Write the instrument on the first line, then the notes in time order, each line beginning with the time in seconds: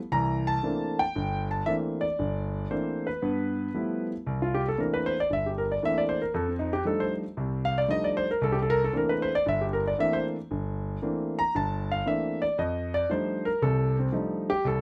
grand piano
0.12 C2 E3 A#5
0.47 A5
0.63 E3 A3 A#3 C4 D4
0.99 G5
1.16 G1
1.51 A5
1.66 E3 A3 A#3 C4 D4 E5
2.01 D5
2.19 G1
2.71 E3 A3 A#3 C4 D4 C5
3.07 B4
3.22 G2 B3
3.74 F3 G3 A3 B3 E4
4.27 C2
4.42 F4
4.54 G4
4.68 A4
4.78 E3 A3 A#3 C4 D4 A#4
4.94 B4
5.06 C5
5.20 D5
5.30 G1 E5
5.46 G4
5.58 A#4
5.72 D5
5.83 E3 A3 A#3 C4 D4 E5
5.98 D5
6.09 C5
6.22 A#4
6.34 F2 A4
6.48 C4
6.59 D#4
6.73 G4
6.85 F3 G3 A3 D4 D#4 A4
7.00 C5
7.37 C2 C3
7.65 F5
7.78 D5
7.88 F3 G3 A3 D4 D#4 D#5
8.04 D5
8.17 C5
8.31 A#4
8.41 C2 A4
8.52 G4
8.62 A4
8.70 A#4
8.84 A4
8.93 E3 A3 A#3 C4 D4
8.97 A#4
9.09 B4
9.22 C5
9.35 D5
9.46 G1 E5
9.61 G4
9.73 A#4
9.87 D5
9.98 E3 A3 A#3 C4 D4 E5
10.13 C5
10.51 G1
11.02 E3 A3 A#3 C4 D4
11.39 A#5
11.55 G1 A5
11.92 F5
12.06 E3 A3 A#3 C4 D4 E5
12.42 D5
12.58 F2 D#5
12.94 D5
13.10 F3 G3 A3 D4 D#4 C5
13.45 A#4
13.62 C2 C3 A4
13.99 C4
14.12 F3 G3 A3 D4 D#4
14.50 G4
14.65 C2 A4